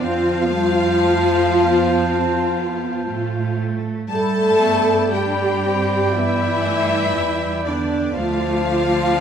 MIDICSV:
0, 0, Header, 1, 10, 480
1, 0, Start_track
1, 0, Tempo, 1020408
1, 11, Time_signature, 4, 2, 24, 8
1, 2891, Tempo, 998336
1, 4361, End_track
2, 0, Start_track
2, 0, Title_t, "Flute section"
2, 0, Program_c, 0, 73
2, 19, Note_on_c, 0, 81, 83
2, 1798, Note_off_c, 0, 81, 0
2, 1941, Note_on_c, 0, 83, 83
2, 3705, Note_off_c, 0, 83, 0
2, 3853, Note_on_c, 0, 81, 80
2, 4361, Note_off_c, 0, 81, 0
2, 4361, End_track
3, 0, Start_track
3, 0, Title_t, "Oboe"
3, 0, Program_c, 1, 68
3, 14, Note_on_c, 1, 79, 91
3, 1780, Note_off_c, 1, 79, 0
3, 1931, Note_on_c, 1, 79, 91
3, 3833, Note_off_c, 1, 79, 0
3, 3850, Note_on_c, 1, 74, 82
3, 4361, Note_off_c, 1, 74, 0
3, 4361, End_track
4, 0, Start_track
4, 0, Title_t, "Violin section"
4, 0, Program_c, 2, 48
4, 16, Note_on_c, 2, 77, 105
4, 1690, Note_off_c, 2, 77, 0
4, 1929, Note_on_c, 2, 81, 119
4, 2392, Note_off_c, 2, 81, 0
4, 2420, Note_on_c, 2, 79, 90
4, 2889, Note_on_c, 2, 76, 110
4, 2894, Note_off_c, 2, 79, 0
4, 3612, Note_off_c, 2, 76, 0
4, 3616, Note_on_c, 2, 74, 80
4, 3849, Note_off_c, 2, 74, 0
4, 3855, Note_on_c, 2, 77, 108
4, 4361, Note_off_c, 2, 77, 0
4, 4361, End_track
5, 0, Start_track
5, 0, Title_t, "Violin section"
5, 0, Program_c, 3, 48
5, 9, Note_on_c, 3, 77, 108
5, 1668, Note_off_c, 3, 77, 0
5, 1922, Note_on_c, 3, 81, 118
5, 2389, Note_off_c, 3, 81, 0
5, 2413, Note_on_c, 3, 79, 89
5, 2890, Note_off_c, 3, 79, 0
5, 2894, Note_on_c, 3, 76, 113
5, 3615, Note_off_c, 3, 76, 0
5, 3616, Note_on_c, 3, 74, 81
5, 3848, Note_off_c, 3, 74, 0
5, 3865, Note_on_c, 3, 77, 113
5, 4361, Note_off_c, 3, 77, 0
5, 4361, End_track
6, 0, Start_track
6, 0, Title_t, "Clarinet"
6, 0, Program_c, 4, 71
6, 3, Note_on_c, 4, 72, 94
6, 1794, Note_off_c, 4, 72, 0
6, 1928, Note_on_c, 4, 74, 94
6, 3847, Note_on_c, 4, 72, 95
6, 3854, Note_off_c, 4, 74, 0
6, 4361, Note_off_c, 4, 72, 0
6, 4361, End_track
7, 0, Start_track
7, 0, Title_t, "Viola section"
7, 0, Program_c, 5, 48
7, 15, Note_on_c, 5, 65, 120
7, 1671, Note_off_c, 5, 65, 0
7, 1931, Note_on_c, 5, 69, 118
7, 2394, Note_off_c, 5, 69, 0
7, 2413, Note_on_c, 5, 67, 98
7, 2890, Note_off_c, 5, 67, 0
7, 2890, Note_on_c, 5, 64, 112
7, 3613, Note_off_c, 5, 64, 0
7, 3617, Note_on_c, 5, 62, 93
7, 3852, Note_on_c, 5, 65, 122
7, 3854, Note_off_c, 5, 62, 0
7, 4361, Note_off_c, 5, 65, 0
7, 4361, End_track
8, 0, Start_track
8, 0, Title_t, "Cello section"
8, 0, Program_c, 6, 48
8, 11, Note_on_c, 6, 60, 100
8, 251, Note_on_c, 6, 55, 85
8, 254, Note_off_c, 6, 60, 0
8, 490, Note_on_c, 6, 57, 82
8, 493, Note_off_c, 6, 55, 0
8, 730, Note_off_c, 6, 57, 0
8, 731, Note_on_c, 6, 59, 90
8, 969, Note_off_c, 6, 59, 0
8, 970, Note_on_c, 6, 60, 93
8, 1205, Note_off_c, 6, 60, 0
8, 1210, Note_on_c, 6, 59, 85
8, 1449, Note_off_c, 6, 59, 0
8, 1451, Note_on_c, 6, 57, 92
8, 1920, Note_off_c, 6, 57, 0
8, 1933, Note_on_c, 6, 55, 93
8, 2168, Note_off_c, 6, 55, 0
8, 2168, Note_on_c, 6, 59, 83
8, 2406, Note_on_c, 6, 62, 89
8, 2410, Note_off_c, 6, 59, 0
8, 2648, Note_off_c, 6, 62, 0
8, 2650, Note_on_c, 6, 60, 89
8, 2889, Note_off_c, 6, 60, 0
8, 2892, Note_on_c, 6, 59, 95
8, 3132, Note_off_c, 6, 59, 0
8, 3136, Note_on_c, 6, 57, 81
8, 3374, Note_off_c, 6, 57, 0
8, 3374, Note_on_c, 6, 55, 85
8, 3612, Note_on_c, 6, 59, 86
8, 3613, Note_off_c, 6, 55, 0
8, 3850, Note_on_c, 6, 57, 95
8, 3851, Note_off_c, 6, 59, 0
8, 4328, Note_off_c, 6, 57, 0
8, 4329, Note_on_c, 6, 62, 86
8, 4361, Note_off_c, 6, 62, 0
8, 4361, End_track
9, 0, Start_track
9, 0, Title_t, "French horn section"
9, 0, Program_c, 7, 60
9, 12, Note_on_c, 7, 53, 116
9, 1688, Note_off_c, 7, 53, 0
9, 1934, Note_on_c, 7, 57, 117
9, 2395, Note_off_c, 7, 57, 0
9, 2413, Note_on_c, 7, 55, 94
9, 2890, Note_off_c, 7, 55, 0
9, 2891, Note_on_c, 7, 52, 108
9, 3613, Note_off_c, 7, 52, 0
9, 3616, Note_on_c, 7, 50, 80
9, 3848, Note_off_c, 7, 50, 0
9, 3856, Note_on_c, 7, 53, 118
9, 4361, Note_off_c, 7, 53, 0
9, 4361, End_track
10, 0, Start_track
10, 0, Title_t, "Double bass section"
10, 0, Program_c, 8, 48
10, 10, Note_on_c, 8, 41, 92
10, 1447, Note_on_c, 8, 45, 83
10, 1448, Note_off_c, 8, 41, 0
10, 1927, Note_off_c, 8, 45, 0
10, 1930, Note_on_c, 8, 43, 87
10, 3353, Note_off_c, 8, 43, 0
10, 3371, Note_on_c, 8, 40, 78
10, 3851, Note_off_c, 8, 40, 0
10, 3854, Note_on_c, 8, 38, 84
10, 4361, Note_off_c, 8, 38, 0
10, 4361, End_track
0, 0, End_of_file